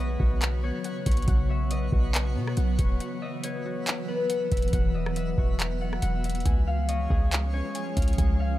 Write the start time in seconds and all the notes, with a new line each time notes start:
Already playing: B1 C#3 F#3 B3 F#4 G#4 C#5 F#5 G#5 B5
0.00 B4 D#5
0.20 B1 F#4, kick
0.42 clap, closed hi-hat
0.63 B3 C#5
0.84 F#5, closed hi-hat
1.06 B1 C#5, kick, closed hi-hat
1.12 closed hi-hat
1.17 closed hi-hat
1.22 closed hi-hat
1.28 B1 F#5, kick, closed hi-hat
1.49 C#5 E5
1.71 B4 D#5, closed hi-hat
1.92 B1 F#4, kick
2.14 clap, closed hi-hat
2.36 B2 B3
2.47 cross-stick
2.57 B1 F#5, closed hi-hat
2.79 E1 C#5, kick, closed hi-hat
3.00 E3 B3 F#4 E5 F#5, closed hi-hat
3.22 D#5 E5
3.44 B4 C#5, closed hi-hat
3.65 F#4
3.87 clap, closed hi-hat
4.08 B3 B4
4.30 F#5, closed hi-hat
4.52 E1 E5, kick, closed hi-hat
4.57 closed hi-hat
4.62 closed hi-hat
4.68 closed hi-hat
4.73 E1 F#5, kick, closed hi-hat
4.94 D#5 E5
5.06 cross-stick
5.16 B4 E5, closed hi-hat
5.38 E1 F#4, kick
5.60 clap, closed hi-hat
5.81 B3 F#5
5.93 cross-stick
6.02 E1 F#5, closed hi-hat
6.24 E5, closed hi-hat
6.30 closed hi-hat
6.35 closed hi-hat
6.40 closed hi-hat
6.45 C#2 F3 G#3 C#4 F4 C#5 G#5, kick, closed hi-hat
6.67 F5
6.88 C#5 D#5, closed hi-hat
7.10 C#2 G#4, kick
7.32 clap, closed hi-hat
7.53 C#4 C#5
7.75 G#5, closed hi-hat
7.97 C#2 F5, kick, closed hi-hat
8.02 closed hi-hat
8.08 closed hi-hat
8.13 closed hi-hat
8.18 C#2 G#5, kick, closed hi-hat
8.40 F5